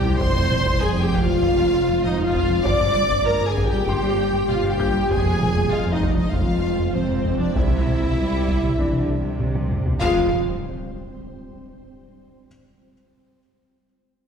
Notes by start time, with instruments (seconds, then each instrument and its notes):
Already playing: double bass section C2, sub bass C2, cello section C3, ambient pad G3 C4 E4 C5, viola section G4, felt piano D5 D6, violin section G5
0.05 analog synth bass C3, taiko low
0.19 sub bass F1, double bass section F1, analog synth bass F2, cello section F2, ambient pad G#3 C4 F4 C5, french horn section C5, viola section C5, violin section C6, taiko
0.36 analog synth bass F2, taiko mid
0.51 analog synth bass F3, taiko mid
0.66 analog synth bass F2, taiko
0.81 double bass section F1, analog synth bass F2, cello section F2, viola section G#4, french horn section G#4, violin section G#5
0.97 analog synth bass F2, viola section G4, violin section G5
1.02 french horn section G4, violin section G5
1.12 analog synth bass F2, taiko
1.21 viola section F4, french horn section F4, violin section F5
1.28 analog synth bass F3, taiko mid
1.43 double bass section F1, analog synth bass F2, cello section F2, taiko
1.59 analog synth bass F3
1.74 analog synth bass F3
1.89 analog synth bass F2
2.04 double bass section F1, cello section F2, analog synth bass F3, viola section D#4, french horn section D#4, violin section D#5, taiko mid
2.20 analog synth bass F2
2.24 viola section F4, french horn section F4, violin section F5
2.35 analog synth bass F2, taiko
2.50 analog synth bass F3
2.65 sub bass G1, double bass section G1, cello section G2, analog synth bass G2, ambient pad G3 A#3 G4, viola section D5, french horn section D5, violin section D6, taiko
2.81 analog synth bass G2, taiko mid
2.95 analog synth bass G3, taiko mid
3.12 analog synth bass G2, taiko
3.26 double bass section G1, analog synth bass G2, cello section G2, viola section A#4, french horn section A#4, violin section A#5
3.42 analog synth bass G2, viola section G#4
3.48 french horn section G#4, violin section G#5
3.57 analog synth bass G2, taiko
3.67 viola section G4, french horn section G4, violin section G5
3.72 analog synth bass G3, taiko mid
3.87 double bass section G1, analog synth bass G2, cello section G2, felt piano C6, taiko
4.03 analog synth bass G3
4.18 analog synth bass G3
4.33 analog synth bass G2
4.48 double bass section G1, cello section G2, analog synth bass G3, viola section F4, french horn section F4, violin section F5, taiko mid
4.63 analog synth bass G2
4.69 viola section G4, french horn section G4, violin section G5
4.79 analog synth bass G2, felt piano F4 G6, taiko
4.94 analog synth bass G3
5.09 sub bass F1, double bass section F1, analog synth bass F2, cello section F2, ambient pad G#3 C4 F4 C5, viola section G#4, french horn section G#4, violin section G#5, taiko
5.25 analog synth bass F2, taiko mid
5.39 analog synth bass F3, taiko mid
5.55 analog synth bass F2, taiko
5.71 double bass section F1, analog synth bass F2, cello section F2, viola section F4, french horn section F4, felt piano D#5, violin section F5
5.87 analog synth bass F2
5.92 viola section D#4, french horn section D#4, violin section D#5
6.01 analog synth bass F2, taiko
6.12 viola section D4, french horn section D4, violin section D5
6.17 analog synth bass F3, viola section D#4, french horn section D#4, violin section D#5, taiko mid
6.31 double bass section F1, analog synth bass F2, cello section F2, viola section F4, french horn section F4, violin section F5, taiko
6.48 analog synth bass F3
6.63 analog synth bass F3
6.79 analog synth bass F2
6.93 double bass section F1, cello section F2, analog synth bass F3, french horn section C4, viola section C4, violin section C5, taiko mid
7.10 analog synth bass F2
7.24 analog synth bass F2, taiko
7.40 analog synth bass F3, french horn section D4, viola section D4, violin section D5
7.55 analog synth bass C2, sub bass C2, double bass section C2, cello section C3, ambient pad G3 G4, viola section E4, french horn section E4, violin section E5, taiko
7.71 analog synth bass C2, taiko mid
7.86 analog synth bass C3, taiko mid
8.01 analog synth bass C2, taiko
8.17 analog synth bass C2, double bass section C2, cello section G3
8.33 analog synth bass C2
8.48 analog synth bass C2, taiko
8.64 analog synth bass C3, taiko mid
8.78 analog synth bass C2, double bass section C2, cello section E3, felt piano D4 D5, taiko
8.93 analog synth bass C3
9.00 cello section D3
9.09 analog synth bass C3
9.20 analog synth bass C2, cello section C3
9.39 double bass section C2, analog synth bass C3, taiko mid
9.55 analog synth bass C2, taiko high
9.71 analog synth bass C2, taiko low-mid
9.86 analog synth bass C3, taiko low
10.00 sub bass F1, double bass section F1, cello section F2, viola section G#3, french horn section F4, violin section F5, impact